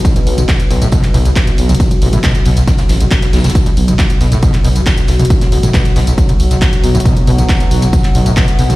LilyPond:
<<
  \new Staff \with { instrumentName = "Synth drone" } { \clef bass \time 4/4 \key c \lydian \tempo 4 = 137 <b, fis>1~ | <b, fis>1 | <b, fis>1~ | <b, fis>1~ |
<b, fis>1 | }
  \new Staff \with { instrumentName = "Acid bass" } { \clef bass \time 4/4 \key c \lydian r16 b,,16 r16 b,,16 r8 b,,16 a,16 b,16 r16 b,16 b,,16 r16 b,,16 r16 b,,16 | r8 b,,16 a,16 b,16 r16 b,16 b,,16 r16 b,,16 r16 b,,16 r16 b,16 b,,16 b,,16 | r16 b,,16 r16 b,,16 r8 b,,16 a,16 b,16 r16 b,16 b,,16 r16 b,,16 r16 b,,16 | r8 b,,16 a,16 b,16 r16 b,16 b,,16 r16 b,,16 r16 b,,16 r8 b,,16 a,16 |
b,16 r16 b,16 b,,16 r16 b,,16 r16 b,,16 r8 b,,16 a,16 b,16 r16 b,16 b,,16 | }
  \new Staff \with { instrumentName = "Detuned saw bass" } { \clef bass \time 4/4 \key c \lydian r8 b,,8 r8 b,,8 r8 b,,8 r8 b,,8 | r8 a,,8 r8 b,,8 r8 a,,8 r8 b,,8 | r8 b,,8 r8 b,,8 r8 b,,8 r8 b,,8 | r8 a,,8 r8 b,,8 r8 b,,8 r8 b,,8 |
r8 b,,8 r8 b,,8 r8 b,,8 r8 b,,8 | }
  \new DrumStaff \with { instrumentName = "Drums" } \drummode { \time 4/4 <hh bd cymr tamb>16 <hh cymr tamb toml>16 <hho cymr tamb>16 <hh cymr tamb toml>16 <hc hh bd cymr sn tamb>16 <hh cymr tamb>16 <hho cymr tamb>16 <hh cymr tamb>16 <hh bd cymr tamb>16 <hc hh cymr sn tamb>16 <hho cymr tamb>16 <hh cymr tamb>16 <hc hh bd cymr sn tamb>16 <hh cymr sn tamb>16 <hho cymr tamb>16 <hh cymr sn tamb toml>32 hh32 | <hh bd cymr tamb>16 <hh cymr tamb toml>16 <hho cymr tamb>16 <hh cymr tamb toml>16 <hc hh bd cymr sn tamb>16 <hh cymr sn tamb>16 <hho cymr tamb>16 <hh cymr tamb>16 <hh bd cymr sn tamb>16 <hh cymr sn tamb>16 <hho cymr sn tamb>16 <hh cymr tamb>16 <hc hh bd cymr tamb>16 <hh cymr tamb>16 <hho cymr sn tamb>32 <sn tamb>32 <hh cymr sn tamb toml>32 <hh sn tamb>32 | <hh bd cymr tamb>16 <hh cymr tamb toml>16 <hho cymr tamb>16 <hh cymr tamb toml>16 <hc hh bd cymr sn tamb>16 <hh cymr tamb>16 <hho cymr tamb>16 <hh cymr tamb>16 <hh bd cymr tamb>16 <hc hh cymr sn tamb>16 <hho cymr tamb>16 <hh cymr tamb>16 <hc hh bd cymr sn tamb>16 <hh cymr sn tamb>16 <hho cymr sn tamb>16 <hh cymr tamb toml>32 hh32 | <hh bd cymr tamb>16 <hh cymr sn tamb toml>16 <hho cymr>16 <hh cymr tamb toml>16 <hc hh bd cymr sn tamb>16 <hh cymr sn tamb>16 <hho cymr sn tamb>16 <hh cymr tamb>16 <hh bd cymr tamb>16 <hh cymr tamb>16 <hho cymr tamb>16 <hh cymr sn tamb>16 <hc hh bd cymr sn tamb>16 <hh cymr sn tamb>16 <hho cymr tamb>16 <hh cymr tamb toml>32 hh32 |
<hh bd cymr tamb>16 <hh cymr tamb toml>16 <hho cymr tamb>16 <hh cymr tamb toml>16 <hc hh bd cymr sn tamb>16 <hh cymr tamb>16 <hho cymr tamb>16 <hh cymr tamb>16 <hh bd cymr tamb>16 <hc hh cymr sn tamb>16 <hho cymr tamb>16 <hh cymr tamb>16 <hc hh bd cymr sn tamb>16 <hh cymr sn tamb>16 <hho cymr tamb>16 <hh cymr sn tamb toml>16 | }
>>